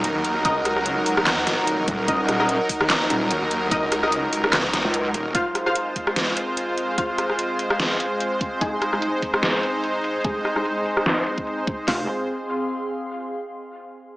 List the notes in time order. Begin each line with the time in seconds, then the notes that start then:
Already playing: F#3 D#4 G#4 A#4 F#5 A#5
0.04 D#1, closed hi-hat
0.15 D#2
0.24 closed hi-hat
0.45 D#4 A#4 D#5, kick, closed hi-hat
0.56 C#2
0.65 cross-stick, closed hi-hat
0.76 cross-stick
0.86 closed hi-hat
1.06 open hi-hat
1.17 D#2, cross-stick
1.26 snare, clap, closed hi-hat
1.47 D#1, snare, closed hi-hat
1.67 closed hi-hat
1.88 D#1, kick, closed hi-hat
2.08 D#1 D#4 A#4 D#5, kick, closed hi-hat
2.29 D#1, cross-stick, closed hi-hat
2.40 D#4 A#4 D#5, cross-stick
2.49 closed hi-hat
2.69 kick, open hi-hat
2.81 D#2, cross-stick
2.90 snare, clap, closed hi-hat
3.10 D#1, closed hi-hat
3.31 D#1, closed hi-hat
3.42 D#2
3.51 closed hi-hat
3.71 D#4 A#4 D#5, kick, closed hi-hat
3.83 C#2
3.92 cross-stick, closed hi-hat
4.03 D#4 A#4 D#5, cross-stick
4.12 closed hi-hat
4.33 open hi-hat
4.44 C#2, cross-stick
4.53 snare, clap, closed hi-hat
4.73 snare, closed hi-hat
4.85 C#2
4.94 closed hi-hat
5.14 D#1, closed hi-hat
5.35 G#3 C4 F4 C5 F5, kick, closed hi-hat
5.47 G#4
5.55 cross-stick, closed hi-hat
5.59 F5
5.66 F4 C5 F5, cross-stick
5.75 closed hi-hat
5.81 C6
5.96 kick, closed hi-hat
6.07 cross-stick
6.16 snare, closed hi-hat
6.37 closed hi-hat
6.57 closed hi-hat
6.78 closed hi-hat
6.98 F4 C5 F5, kick, closed hi-hat
7.18 cross-stick, closed hi-hat
7.30 cross-stick
7.39 closed hi-hat
7.59 closed hi-hat
7.70 cross-stick
7.80 snare, closed hi-hat
8.00 closed hi-hat
8.20 closed hi-hat
8.41 kick, closed hi-hat
8.61 G#3 D#4 G#4, kick, closed hi-hat
8.71 D#5
8.82 cross-stick, closed hi-hat
8.93 G#3 D#4 G#4, cross-stick
9.02 closed hi-hat
9.22 kick, closed hi-hat
9.34 cross-stick
9.43 snare, closed hi-hat
9.63 closed hi-hat
9.84 closed hi-hat
10.04 closed hi-hat
10.24 G#3 D#4 G#4, kick, closed hi-hat
10.45 cross-stick, closed hi-hat
10.56 G#3 D#4 G#4, cross-stick
10.65 closed hi-hat
10.86 closed hi-hat
10.97 cross-stick
11.06 snare, closed hi-hat
11.27 closed hi-hat
11.38 kick
11.47 closed hi-hat
11.67 kick, closed hi-hat
11.88 F1 G#3 C4 F4 C5 F5, kick, snare, open hi-hat
11.94 G#4
12.01 F5
12.06 C6